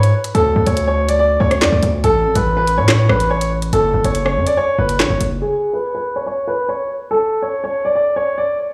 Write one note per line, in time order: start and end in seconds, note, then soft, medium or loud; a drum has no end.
0.00 0.12 G#2 loud
0.00 0.12 C#5 medium
0.00 closed hi-hat medium
0.24 closed hi-hat medium
0.35 0.55 D2 loud
0.35 0.64 A4 loud
0.35 closed hi-hat medium
0.56 0.66 D2 loud
0.66 1.37 D2 loud
0.66 0.86 C#5 medium
0.66 closed hi-hat medium
0.77 closed hi-hat medium
0.87 1.07 C#5 medium
1.09 1.18 D5 medium
1.09 closed hi-hat medium
1.19 1.39 D5 medium
1.40 1.63 D2 loud
1.40 1.60 C#5 medium
1.51 cross-stick loud
1.51 closed hi-hat medium
1.61 1.72 F#2 loud
1.61 1.81 D5 medium
1.61 snare loud
1.61 clap loud
1.61 closed hi-hat medium
1.72 1.82 D2 loud
1.83 2.03 D2 loud
1.83 closed hi-hat medium
2.04 2.26 A1 loud
2.04 2.34 A4 loud
2.04 closed hi-hat medium
2.25 2.35 G#1 loud
2.35 2.79 A1 loud
2.35 2.55 B4 medium
2.35 closed hi-hat medium
2.57 2.76 B4 medium
2.67 closed hi-hat medium
2.78 3.08 A2 loud
2.78 2.87 C#5 medium
2.88 3.08 C#5 medium
2.88 snare loud
2.88 clap loud
2.88 closed hi-hat medium
3.09 3.70 A1 loud
3.09 3.29 B4 medium
3.09 cross-stick loud
3.20 closed hi-hat medium
3.30 3.50 C#5 medium
3.41 closed hi-hat medium
3.62 closed hi-hat medium
3.73 3.93 F#1 loud
3.73 4.03 A4 loud
3.73 closed hi-hat medium
3.94 4.04 F#1 loud
4.04 4.38 F#1 loud
4.04 4.24 C#5 medium
4.04 closed hi-hat medium
4.15 closed hi-hat medium
4.25 4.45 C#5 medium
4.25 cross-stick medium
4.36 4.46 F#2 loud
4.47 4.56 D5 medium
4.47 closed hi-hat medium
4.57 4.77 C#5 medium
4.78 5.01 F#1 loud
4.78 4.98 B4 medium
4.89 closed hi-hat medium
4.99 5.10 A1 loud
4.99 5.19 C#5 medium
4.99 snare loud
4.99 clap loud
4.99 closed hi-hat soft
5.10 5.20 F#1 loud
5.21 5.41 F#1 loud
5.21 closed hi-hat medium
5.42 5.72 G#4 loud
5.73 5.93 B4 medium
5.95 6.14 B4 medium
6.16 6.25 C#5 medium
6.26 6.46 C#5 medium
6.48 6.67 B4 medium
6.69 6.88 C#5 medium
7.11 7.41 A4 loud
7.42 7.62 C#5 medium
7.64 7.83 C#5 medium
7.85 7.94 D5 medium
7.95 8.15 D5 medium
8.16 8.36 C#5 medium
8.38 8.57 D5 medium